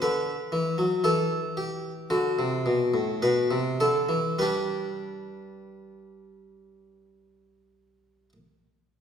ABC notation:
X:1
M:4/4
L:1/16
Q:1/4=52
K:G
V:1 name="Harpsichord"
B4 A2 G2 F4 B2 A2 | [DGB]16 |]
V:2 name="Harpsichord" clef=bass
D,2 E, F, E,4 D, C, B,, A,, B,, C, D, E, | G,16 |]